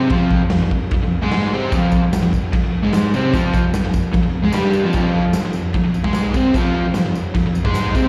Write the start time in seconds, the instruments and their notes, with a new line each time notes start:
Already playing: overdriven electric guitar C4
0.10 overdriven electric guitar F2 F3, kick, crash
0.31 kick
0.43 overdriven electric guitar F2
0.50 overdriven electric guitar F2, snare, crash
0.63 overdriven electric guitar F2
0.71 kick
0.91 overdriven electric guitar F2, kick, crash
1.03 overdriven electric guitar F2
1.22 overdriven electric guitar G#2 G#3
1.32 snare, crash
1.54 overdriven electric guitar C3 C4
1.72 overdriven electric guitar F2 F3, kick, tambourine, crash
1.92 kick, tambourine
2.04 overdriven electric guitar F2
2.13 overdriven electric guitar F2, snare, tambourine, crash
2.23 overdriven electric guitar F2
2.33 kick, tambourine
2.53 overdriven electric guitar F2, kick, tambourine, crash
2.65 overdriven electric guitar F2
2.83 overdriven electric guitar G#2 G#3
2.93 snare, tambourine, crash
3.14 overdriven electric guitar C3 C4, tambourine
3.33 overdriven electric guitar F2 F3, kick, tambourine, crash
3.54 kick, tambourine
3.65 overdriven electric guitar F2
3.74 overdriven electric guitar F2, snare, tambourine, crash
3.85 overdriven electric guitar F2
3.94 kick, tambourine
4.13 overdriven electric guitar F2, kick, tambourine, crash
4.24 overdriven electric guitar F2
4.43 overdriven electric guitar G#2 G#3
4.53 overdriven electric guitar G2 G3, snare, tambourine, crash
4.73 tambourine
4.84 overdriven electric guitar F2 F3
4.93 overdriven electric guitar F2 F3, kick, tambourine, crash
5.26 overdriven electric guitar F2
5.33 overdriven electric guitar F2, snare, tambourine, crash
5.45 overdriven electric guitar F2
5.53 tambourine
5.74 overdriven electric guitar F2, kick, tambourine, crash
5.85 overdriven electric guitar F2
5.94 tambourine
6.04 overdriven electric guitar G#2 G#3, kick
6.13 snare, tambourine, crash
6.34 overdriven electric guitar C3 C4, kick, tambourine
6.54 overdriven electric guitar F2 F3, kick, tambourine, crash
6.86 overdriven electric guitar F2
6.94 overdriven electric guitar F2, snare, tambourine, crash
7.06 overdriven electric guitar F2
7.15 tambourine
7.35 overdriven electric guitar F2, kick, tambourine, crash
7.47 overdriven electric guitar F2
7.55 tambourine
7.64 overdriven electric guitar G#2 G#3, kick
7.74 snare, tambourine, crash
7.95 overdriven electric guitar C3 C4, kick, tambourine